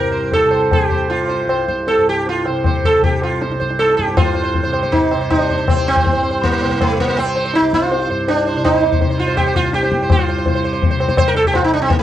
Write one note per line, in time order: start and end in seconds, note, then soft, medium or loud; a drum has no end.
0.00 1.46 C2 medium
0.00 1.97 G2 medium
0.00 0.45 C3 medium
0.00 0.33 A#4 medium
0.12 0.30 C5 soft
0.32 0.73 A4 medium
0.32 tabla tin medium
0.32 tabla ge medium
0.45 0.95 C3 medium
0.51 0.69 C5 soft
0.51 tabla na medium
0.71 1.09 G4 medium
0.71 tabla na medium
0.71 tabla ge medium
0.90 1.08 C5 soft
0.90 tabla ge medium
0.95 2.48 C3 medium
1.10 1.64 F4 medium
1.10 tabla te medium
1.29 1.47 C5 soft
1.29 tabla te medium
1.47 3.48 C2 medium
1.47 1.67 C5 soft
1.47 tabla na medium
1.68 1.86 C5 soft
1.68 tabla ke medium
1.87 2.07 A4 medium
1.87 tabla tin medium
1.97 3.97 G2 medium
2.09 2.28 G4 medium
2.27 2.45 F4 medium
2.27 tabla tin medium
2.45 2.98 C3 medium
2.45 2.64 C5 soft
2.45 tabla na medium
2.64 2.83 C5 soft
2.64 tabla na medium
2.64 tabla ge medium
2.84 3.03 A4 medium
2.84 tabla ge soft
2.98 4.66 C3 medium
3.03 3.23 G4 medium
3.03 tabla tin medium
3.03 tabla ge medium
3.22 3.40 F4 medium
3.22 tabla na medium
3.41 3.59 C5 soft
3.41 tabla te medium
3.49 5.65 C2 medium
3.49 tabla te medium
3.60 3.78 C5 soft
3.60 tabla ke medium
3.70 tabla te medium
3.79 3.97 A4 loud
3.79 tabla te medium
3.90 tabla te medium
3.97 4.16 G2 medium
3.97 4.16 G4 medium
3.97 tabla ke medium
4.08 tabla te medium
4.16 6.14 G2 medium
4.16 4.70 F4 medium
4.16 4.24 C5 soft
4.16 tabla na loud
4.16 tabla ge medium
4.25 4.33 C5 soft
4.35 4.42 C5 soft
4.44 4.62 C5 soft
4.54 tabla tin medium
4.54 tabla ge medium
4.64 5.16 C3 medium
4.64 4.72 C5 soft
4.73 4.82 C5 soft
4.73 tabla na medium
4.83 5.01 C5 soft
4.83 tabla ke medium
4.92 5.30 D#4 medium
4.92 tabla tin medium
4.92 tabla ge medium
5.11 5.20 C5 soft
5.11 tabla na medium
5.16 6.64 C3 medium
5.21 5.38 C5 soft
5.30 5.65 D4 medium
5.30 tabla na medium
5.30 tabla ge medium
5.39 5.48 C5 soft
5.49 5.56 C5 soft
5.49 tabla ge medium
5.58 5.75 C5 soft
5.65 7.60 C2 medium
5.65 tabla na medium
5.65 tabla ge medium
5.69 5.87 C4 medium
5.77 5.94 C5 soft
5.87 6.45 C4 medium
5.87 tabla te medium
5.96 6.03 C5 soft
5.96 tabla ge medium
6.04 6.12 C5 soft
6.04 tabla tin medium
6.04 tabla ge medium
6.13 8.09 G2 medium
6.13 6.22 C5 soft
6.23 6.30 C5 soft
6.31 6.50 C5 soft
6.43 6.81 A#3 medium
6.43 tabla tin medium
6.43 tabla ge medium
6.51 6.60 C5 soft
6.61 7.12 C3 medium
6.61 6.68 C5 soft
6.61 tabla na medium
6.70 6.88 C5 soft
6.70 tabla ke medium
6.81 7.00 A3 loud
6.81 tabla na medium
6.81 tabla ge medium
6.99 7.19 A#3 loud
6.99 tabla ge medium
7.08 7.25 C5 soft
7.12 8.56 C3 medium
7.17 7.56 C4 loud
7.17 tabla na medium
7.26 7.36 C5 soft
7.35 7.44 C5 soft
7.35 tabla na medium
7.45 7.62 C5 soft
7.54 7.74 D#4 loud
7.54 tabla te medium
7.60 9.53 C2 medium
7.60 tabla te medium
7.73 8.08 F4 loud
7.73 tabla ke medium
7.82 7.90 C5 soft
7.82 tabla te medium
7.92 8.00 C5 soft
7.92 tabla tin medium
8.01 8.09 C5 soft
8.10 10.01 G2 medium
8.10 8.27 C5 soft
8.28 8.64 D4 medium
8.28 tabla tin medium
8.47 8.55 C5 soft
8.56 9.05 C3 medium
8.56 8.73 C5 soft
8.64 9.21 D#4 loud
8.64 tabla na medium
8.64 tabla ge medium
8.74 8.82 C5 soft
8.83 8.91 C5 soft
8.83 tabla te medium
8.92 9.00 C5 soft
8.92 tabla ge medium
9.01 9.09 C5 soft
9.01 tabla tin medium
9.01 tabla ge medium
9.05 10.48 C3 medium
9.10 9.27 C5 soft
9.19 9.37 F4 medium
9.28 9.45 C5 soft
9.37 9.56 G4 loud
9.37 tabla na medium
9.37 tabla ge medium
9.46 9.63 C5 soft
9.54 11.43 C2 medium
9.54 9.74 F4 loud
9.54 tabla ge medium
9.65 9.82 C5 soft
9.73 10.11 G4 loud
9.73 tabla te medium
9.83 10.00 C5 soft
9.83 tabla te medium
9.92 tabla ke medium
10.01 11.89 G2 medium
10.01 10.18 C5 soft
10.01 tabla te medium
10.10 10.61 F4 medium
10.10 tabla na loud
10.10 tabla ge loud
10.19 10.28 C5 soft
10.29 10.37 C5 soft
10.38 10.46 C5 soft
10.46 10.96 C3 medium
10.46 10.54 C5 soft
10.46 tabla tin medium
10.46 tabla ge medium
10.55 10.63 C5 soft
10.64 10.72 C5 soft
10.73 10.90 C5 soft
10.82 tabla tin medium
10.82 tabla ge medium
10.91 10.99 C5 soft
10.96 12.03 C3 medium
11.00 11.07 C5 soft
11.00 tabla na medium
11.08 11.17 C5 soft
11.08 tabla ke medium
11.17 11.27 C5 loud
11.17 tabla na medium
11.17 tabla ge medium
11.28 11.36 A#4 loud
11.35 11.45 A4 loud
11.35 tabla te medium
11.43 12.03 C2 medium
11.43 11.55 G4 loud
11.43 tabla ge medium
11.54 11.64 F4 loud
11.54 tabla na medium
11.54 tabla ge medium
11.64 11.73 D#4 medium
11.73 11.81 D4 medium
11.82 11.90 C4 loud
11.90 12.03 G2 medium
11.90 11.99 A#3 medium
11.90 tabla tin medium
11.90 tabla ge medium
11.99 12.03 A3 medium